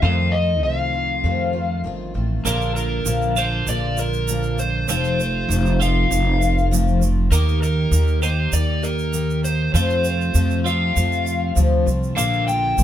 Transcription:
0.02 F2 C3 D#3 F3 A3 C4 D#4 F4 A4 F5
0.32 A3 C4 F4 D#5
0.37 D#3
0.63 C2 D#3 A3 C4 F4 F5
0.93 D#3 A3 C4 F4
1.24 F2 C3 D#3 A3 C4 F4
1.53 D#3 A3 C4 F4
1.84 G1 D#3 A3 C4 F4
2.14 A1 D#3 A3 C4 F4
2.45 A#1 A#2 D3 F3 A#3 D4 F4 A#4, shaker
2.61 shaker
2.75 A#3 D4 F4 A#4, shaker
3.05 A#1 A#2 F3 A#3 D4 F4, shaker
3.22 shaker
3.36 A#2 D3 A#3 D4 F4 C5, shaker
3.67 A#1 F3 A#3 D4 F4 D5, shaker
3.96 A#3 D4 F4 A#4, shaker
4.13 shaker
4.27 A#2 F3 A#3 D4 F4, shaker
4.43 shaker
4.58 A#3 D4 F4 C5, shaker
4.89 F1 F2 C3 F3 A3 C4 F4 C5, shaker
5.04 shaker
5.19 F3 A3 C4 F4, shaker
5.49 F1 F2 C3 F3 A3 C4 F4, shaker
5.66 shaker
5.79 F2 C3 F3 A3 C4 F4 F5, shaker
6.11 F1 F3 A3 C4 F4, shaker
6.40 F3 A3 C4 F4, shaker
6.58 shaker
6.71 F2 C3 F3 A3 C4 F4, shaker
6.88 shaker
6.99 F3 A3 C4 F4, shaker
7.31 D#2 D#3 A#3 D#4 G4 A#4, shaker
7.48 shaker
7.61 A#3 D#4 G4 A#4, shaker
7.91 D#2 D#3 A#3 D#4 G4, shaker
8.07 shaker
8.22 D#3 A#3 D#4 G4 C5, shaker
8.52 D#2 D#3 A#3 D#4 G4 D5, shaker
8.83 A#3 D#4 G4 A#4, shaker
8.99 shaker
9.13 D#3 A#3 D#4 G4, shaker
9.30 shaker
9.43 A#3 D#4 G4 C5, shaker
9.74 F2 C3 F3 A3 C4 F4 C5, shaker
9.90 shaker
10.04 F3 A3 C4 F4, shaker
10.21 shaker
10.34 F2 C3 F3 A3 C4 F4, shaker
10.50 shaker
10.63 F2 C3 F3 A3 C4 F4 F5, shaker
10.94 F2 F3 A3 C4 F4, shaker
11.12 shaker
11.25 F3 A3 C4 F4, shaker
11.55 D2 F2 C3 F3 A3 C4 F4, shaker
11.85 C2 F3 A3 C4 F4, shaker
12.03 shaker
12.16 A#1 A#2 D3 F3 A#3 D4 F4 F5, shaker
12.33 shaker
12.46 A#3 D4 F4 G5, shaker
12.77 A#1 A#2 F3 A#3 D4 F4, shaker

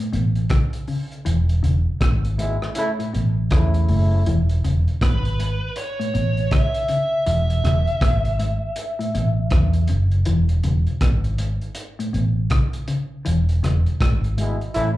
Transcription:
0.13 A1 B2, closed hi-hat
0.35 closed hi-hat
0.50 C#3, kick, cross-stick, closed hi-hat
0.73 closed hi-hat
0.88 C#3, open hi-hat
1.12 closed hi-hat
1.25 E1 E3, closed hi-hat
1.49 closed hi-hat
1.63 E1 C#3, closed hi-hat
2.00 G#1 B2, kick, cross-stick, closed hi-hat
2.25 closed hi-hat
2.37 G#2 B2 G#3 E4, closed hi-hat
2.62 cross-stick
2.75 C#3 A3 E4, closed hi-hat
2.99 A2, closed hi-hat
3.13 A1 B2, closed hi-hat
3.51 E2 C#3 A3 E4, kick, cross-stick, closed hi-hat
3.74 closed hi-hat
3.88 F#1 A2, open hi-hat
4.26 E1 E3, closed hi-hat
4.49 closed hi-hat
4.64 E1 C#3, closed hi-hat
4.88 closed hi-hat
5.01 G#1 B2 B4, kick, cross-stick, closed hi-hat
5.25 closed hi-hat
5.39 G#2, closed hi-hat
5.76 C#5, closed hi-hat
5.99 A2, closed hi-hat
6.14 A1 B2, closed hi-hat
6.37 closed hi-hat
6.51 C#3 E5, kick, cross-stick, closed hi-hat
6.74 closed hi-hat
6.88 C#3, closed hi-hat
7.26 E1 E3 E5, closed hi-hat
7.50 closed hi-hat
7.64 E1 C#3, cross-stick, closed hi-hat
7.87 closed hi-hat
8.01 G#1 B2, kick, cross-stick, closed hi-hat
8.25 closed hi-hat
8.39 G#2, closed hi-hat
8.76 closed hi-hat
8.99 A2, closed hi-hat
9.14 A1 B2, closed hi-hat
9.51 E2 C#3, kick, cross-stick, closed hi-hat
9.73 closed hi-hat
9.88 F#1 C#3, closed hi-hat
10.11 closed hi-hat
10.25 E1 E3, closed hi-hat
10.49 closed hi-hat
10.64 E1 C#3, closed hi-hat
10.87 closed hi-hat
11.01 G#1 B2, kick, cross-stick, closed hi-hat
11.24 closed hi-hat
11.38 G#2, closed hi-hat
11.61 closed hi-hat
11.75 closed hi-hat
11.99 A2, closed hi-hat
12.13 A1 B2, closed hi-hat
12.50 C#3, kick, cross-stick, closed hi-hat
12.73 closed hi-hat
12.88 C#3, closed hi-hat
13.25 E1 E3, closed hi-hat
13.49 closed hi-hat
13.63 E1 C#3, cross-stick, closed hi-hat
13.86 closed hi-hat
14.00 G#1 B2, kick, cross-stick, closed hi-hat
14.24 closed hi-hat
14.37 G#2 B2 G#3 E4, closed hi-hat
14.61 closed hi-hat
14.74 A1 C#3 A3 E4, closed hi-hat

